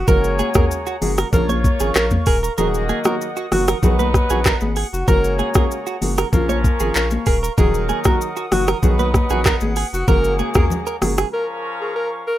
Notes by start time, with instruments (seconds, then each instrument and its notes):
Already playing: woodwind section F#5
0.08 sub bass F#1, grand piano C#3 G#3 A#3 F#4, horn section A#3 G#4 C#5, woodwind section G#4 A#5, clean electric guitar A#4, alto saxophone A#4, kick, low conga, shaker
0.24 shaker
0.39 clean electric guitar G#4, high conga, shaker
0.54 grand piano C#3 G#3 A#3 F#4, alto saxophone G#4, clean electric guitar A#4, kick, cross-stick, mid tom, high conga, shaker
0.71 shaker
0.86 clean electric guitar F#4, shaker
1.01 sub bass F#1, grand piano C#3 G#3 A#3 F#4, alto saxophone G#4, open hi-hat, high conga, low conga, shaker
1.18 clean electric guitar A#4, cross-stick, shaker
1.33 sub bass A#1, grand piano C#3 F3 A#3 F4, horn section A#3 F4 C#5, woodwind section A#4 F5 C#6, alto saxophone A#4, kick, low conga, shaker
1.49 clean electric guitar C#5, high conga, shaker
1.64 kick, high conga, shaker
1.80 sub bass G#1, grand piano C#3 F3 A#3 F4, clean electric guitar G#4, alto saxophone G#4, shaker
1.95 sub bass A#1, clean electric guitar A#4, alto saxophone A#4, cross-stick, clap, shaker
2.11 mid tom, high conga, shaker
2.26 sub bass D#1, clean electric guitar G#4, alto saxophone A#4, kick, open hi-hat, shaker
2.43 clean electric guitar A#4, shaker
2.58 sub bass D#1, grand piano D#3 F#3 A#3 F#4, horn section A#3 F#4 D#5, alto saxophone G#4, clean electric guitar A#4, woodwind section F#5 D#6, low conga, shaker
2.74 shaker
2.89 clean electric guitar G#4, high conga, shaker
3.04 grand piano D#3 F#3 A#3 F#4, alto saxophone F#4, clean electric guitar A#4, cross-stick, high conga, shaker
3.21 shaker
3.37 clean electric guitar F#4, shaker
3.51 sub bass F#1, grand piano D#3 F#3 A#3 F#4, alto saxophone F#4, cross-stick, open hi-hat, high conga, low conga, shaker
3.68 clean electric guitar A#4, cross-stick, shaker
3.83 sub bass B1, grand piano D#3 F#3 B3 F#4, horn section F#3 D#4 B4, alto saxophone G#4, woodwind section B4, kick, low conga, shaker
3.99 clean electric guitar B4, high conga, shaker
4.14 kick, cross-stick, high conga, shaker
4.30 sub bass A#1, grand piano D#3 F#3 B3 F#4, alto saxophone F#4, clean electric guitar G#4, shaker
4.45 clean electric guitar A#4, kick, cross-stick, clap, shaker
4.61 sub bass G#1, alto saxophone G#4, high conga, shaker
4.76 clean electric guitar G#4, open hi-hat, shaker
4.93 sub bass F1, alto saxophone F#4, shaker
5.08 sub bass F#1, grand piano C#3 G#3 A#3 F#4, horn section A#3 G#4 C#5, woodwind section G#4 A#5, clean electric guitar A#4, alto saxophone A#4, kick, low conga, shaker
5.24 shaker
5.39 clean electric guitar G#4, high conga, shaker
5.54 grand piano C#3 G#3 A#3 F#4, alto saxophone G#4, clean electric guitar A#4, kick, cross-stick, high conga, shaker
5.71 shaker
5.87 clean electric guitar F#4, shaker
6.01 sub bass F#1, grand piano C#3 G#3 A#3 F#4, alto saxophone G#4, open hi-hat, high conga, low conga, shaker
6.18 clean electric guitar A#4, cross-stick, shaker
6.33 sub bass A#1, grand piano C#3 F3 A#3 F4, horn section F3 C#4 A#4, woodwind section A#4 F5 C#6, alto saxophone A#4, kick, low conga, shaker
6.49 clean electric guitar C#5, high conga, shaker
6.64 kick, high conga, shaker
6.80 sub bass G#1, grand piano C#3 F3 A#3 F4, clean electric guitar G#4, alto saxophone G#4, shaker
6.95 sub bass A#1, clean electric guitar A#4, alto saxophone A#4, clap, shaker
7.11 high conga, shaker
7.26 sub bass D#1, clean electric guitar G#4, alto saxophone A#4, kick, open hi-hat, shaker
7.43 clean electric guitar A#4, shaker
7.58 sub bass D#1, grand piano D#3 F#3 A#3 F#4, horn section F#3 D#4 A#4, alto saxophone G#4, clean electric guitar A#4, woodwind section F#5 D#6, kick, low conga, shaker
7.74 shaker
7.89 clean electric guitar G#4, high conga, shaker
8.04 grand piano D#3 F#3 A#3 F#4, alto saxophone F#4, clean electric guitar A#4, kick, cross-stick, high conga, shaker
8.21 shaker
8.36 clean electric guitar F#4, shaker
8.51 sub bass F#1, grand piano D#3 F#3 A#3 F#4, alto saxophone F#4, cross-stick, open hi-hat, high conga, low conga, shaker
8.68 clean electric guitar A#4, cross-stick, shaker
8.83 sub bass B1, grand piano D#3 F#3 B3 F#4, horn section F#3 D#4 B4, alto saxophone G#4, woodwind section B4, kick, low conga, shaker
8.99 clean electric guitar B4, high conga, shaker
9.14 kick, cross-stick, high conga, shaker
9.30 sub bass A#1, grand piano D#3 F#3 B3 F#4, alto saxophone F#4, clean electric guitar G#4, shaker
9.45 clean electric guitar A#4, kick, cross-stick, clap, shaker
9.60 sub bass G#1, alto saxophone G#4, high conga, shaker
9.76 clean electric guitar G#4, open hi-hat, shaker
9.93 sub bass F1, alto saxophone F#4, shaker
10.08 sub bass F#1, grand piano C#3 G#3 A#3 F#4, horn section C#3 A#3 G#4, woodwind section G#4 A#5, clean electric guitar A#4, alto saxophone A#4, kick, low conga, shaker
10.24 shaker
10.39 clean electric guitar G#4, high conga, shaker
10.54 grand piano C#3 G#3 A#3 F#4, alto saxophone G#4, clean electric guitar A#4, kick, cross-stick, mid tom, high conga, shaker
10.70 low conga, shaker
10.87 clean electric guitar A#4, shaker
11.01 sub bass F#1, grand piano C#3 G#3 A#3 F#4, alto saxophone G#4, cross-stick, open hi-hat, high conga, low conga, shaker
11.18 clean electric guitar G#4, cross-stick, shaker
11.33 horn section F3 C#4 A#4, woodwind section A#4 F5 C#6, alto saxophone A#4
11.81 alto saxophone G#4
11.96 alto saxophone A#4
12.27 alto saxophone A#4